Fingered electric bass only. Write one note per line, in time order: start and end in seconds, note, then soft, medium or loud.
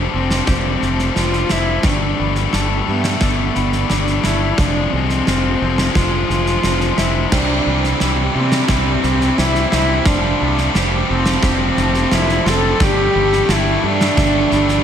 0.14 0.40 F1 medium
0.48 0.74 F1 medium
0.82 1.09 F1 medium
1.16 1.43 F1 medium
1.50 1.77 F1 medium
1.84 2.11 G1 medium
2.19 2.46 G1 medium
2.53 2.80 G1 medium
2.88 3.14 G2 medium
3.21 3.48 G1 medium
3.56 3.83 G1 medium
3.91 4.17 G1 medium
4.25 4.51 G1 medium
4.58 4.85 F1 medium
4.93 5.20 C2 medium
5.27 5.54 F1 medium
5.62 5.88 F1 medium
5.95 6.22 F1 medium
6.29 6.56 F1 medium
6.64 6.91 F1 medium
6.98 7.24 F1 medium
7.32 7.59 C2 medium
7.66 7.93 C2 medium
8.01 8.28 C2 medium
8.35 8.62 C3 medium
8.69 8.96 C2 medium
9.03 9.30 C2 medium
9.38 9.65 C2 medium
9.73 9.99 C2 medium
10.06 10.32 F1 medium
10.41 10.67 C2 medium
10.75 11.01 F1 medium
11.10 11.36 F1 medium
11.43 11.69 F1 medium
11.77 12.04 F1 medium
12.12 12.38 F1 medium
12.46 12.72 F1 medium
12.80 13.07 G1 medium
13.15 13.41 G1 medium
13.49 13.75 G1 medium
13.83 14.09 G2 medium
14.17 14.43 G1 medium
14.52 14.78 G1 medium